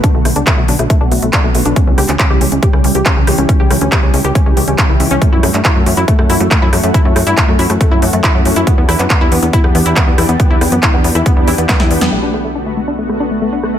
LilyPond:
<<
  \new Staff \with { instrumentName = "Synth pluck" } { \time 4/4 \key b \minor \tempo 4 = 139 d'16 a16 a16 d'16 a16 a16 d'16 a16 a16 d'16 a16 a16 d'16 a16 a16 d'16 | cis'16 cis'16 g'16 cis'16 cis'16 g'16 cis'16 cis'16 g'16 cis'16 cis'16 g'16 cis'16 cis'16 g'16 cis'16 | cis'16 g'16 cis'16 cis'16 g'16 cis'16 cis'16 g'16 cis'16 cis'16 g'16 cis'16 cis'16 e'16 e''16 cis'16 | a16 e'16 a16 a16 e'16 a16 a16 e'16 a16 a16 e'16 a16 a16 e'16 a16 a16 |
e'16 a16 a16 e'16 a16 a16 e'16 a16 a16 e'16 a16 a16 e'16 a16 a16 e'16 | b16 b16 e'16 b16 b16 e'16 b16 b16 e'16 b16 b16 e'16 b16 b16 e'16 b16 | b16 e'16 b16 b16 e'16 b16 b16 e'16 b16 b16 e'16 b16 b16 e'16 b16 b16 | a16 d'16 a16 a16 d'16 a16 a16 d'16 a16 a16 d'16 a16 a16 d'16 a16 a16 | }
  \new Staff \with { instrumentName = "Analog synth pad" } { \time 4/4 \key b \minor <d a b fis'>8 r8 <d a b fis'>8 r8 <d a b fis'>16 <d a b fis'>8 r16 <d a b fis'>8 <d a b fis'>16 <d a b fis'>16 | <e g cis' g'>8 r8 <e g cis' g'>8 r8 <e g cis' g'>16 <e g cis' g'>8 r16 <e g cis' g'>8 <e g cis' g'>16 <e g cis' g'>16 | <e g cis' g'>8 r8 <e g cis' g'>8 r8 <e g cis' g'>16 <e g cis' g'>8 r16 <e g cis' g'>8 <e g cis' g'>16 <e g cis' g'>16 | <e a cis' fis'>8 r8 <e a cis' fis'>8 r8 <e a cis' fis'>16 <e a cis' fis'>8 r16 <e a cis' fis'>8 <e a cis' fis'>16 <e a cis' fis'>16 |
<e a cis' fis'>8 r8 <e a cis' fis'>8 r8 <e a cis' fis'>16 <e a cis' fis'>8 r16 <e a cis' fis'>8 <e a cis' fis'>16 <e a cis' fis'>16 | <e b d' g'>8 r8 <e b d' g'>8 r8 <e b d' g'>16 <e b d' g'>8 r16 <e b d' g'>8 <e b d' g'>16 <e b d' g'>16 | <e b d' g'>8 r8 <e b d' g'>8 r8 <e b d' g'>16 <e b d' g'>8 r16 <e b d' g'>8 <e b d' g'>16 <e b d' g'>16 | <d a b fis'>8 r8 <d a b fis'>8 r8 <d a b fis'>16 <d a b fis'>8 r16 <d a b fis'>8 <d a b fis'>16 <d a b fis'>16 | }
  \new Staff \with { instrumentName = "Analog synth bass" } { \clef bass \time 4/4 \key b \minor r16 b,,16 b,,16 cis,16 r16 b,,16 b,,16 b,,16 r16 b,,16 b,,16 b,,16 r16 b,,16 b,,16 b,,16 | r16 cis,16 cis,16 d,16 r16 cis,16 cis,16 cis,16 r16 cis,16 cis,16 cis,16 r16 cis,16 cis,16 cis,16 | r16 cis,16 cis,16 d,16 r16 cis,16 cis,16 cis,16 r16 cis,16 cis,16 cis,16 r16 cis,16 cis,16 cis,16 | r16 fis,16 fis,16 g,16 r16 fis,16 fis,16 fis,16 r16 fis,16 fis,16 fis,16 r16 fis,16 fis,16 fis,16 |
r16 fis,16 fis,16 g,16 r16 fis,16 fis,16 fis,16 r16 fis,16 fis,16 fis,16 r16 fis,16 fis,16 fis,16 | r16 e,16 e,16 fis,16 r16 e,16 e,16 e,16 r16 e,16 e,16 e,16 r16 e,16 e,16 e,16 | r16 e,16 e,16 fis,16 r16 e,16 e,16 e,16 r16 e,16 e,16 e,16 r16 e,16 e,16 e,16 | b,,1 | }
  \new DrumStaff \with { instrumentName = "Drums" } \drummode { \time 4/4 <hh bd>8 <hho ss>16 hh16 <hc hh bd>8 hho16 <hh ss>16 <hh bd>8 hho16 hh16 <hc hh bd>8 hho16 hh16 | <hh bd>8 <hho ss>16 <hc hh>16 <hc hh bd>8 hho16 hh16 <hh bd>16 ss16 hho16 hh16 <hc hh bd>8 <hho ss>16 hh16 | <hh bd>8 <hho ss>16 hh16 <hc hh bd>8 hho16 <hh ss>16 <hh bd>8 hho16 hh16 <hc hh bd>8 hho16 hh16 | <hh bd>8 <hho ss>16 <hc hh>16 <hc hh bd>8 hho16 hh16 <hh bd>16 ss16 hho16 hh16 <hc hh bd>8 <hho ss>16 hh16 |
<hh bd>8 <hho ss>16 hh16 <hc hh bd>8 hho16 <hh ss>16 <hh bd>8 hho16 hh16 <hc hh bd>8 hho16 hh16 | <hh bd>8 <hho ss>16 <hc hh>16 <hc hh bd>8 hho16 hh16 <hh bd>16 ss16 hho16 hh16 <hc hh bd>8 <hho ss>16 hh16 | <hh bd>8 <hho ss>16 hh16 <hc hh bd>8 hho16 <hh ss>16 <hh bd>8 hho16 hh16 <hc hh bd sn>16 sn16 hho16 <hh sn>16 | cymc8 ss8 r4 r16 ss8. r8 ss8 | }
>>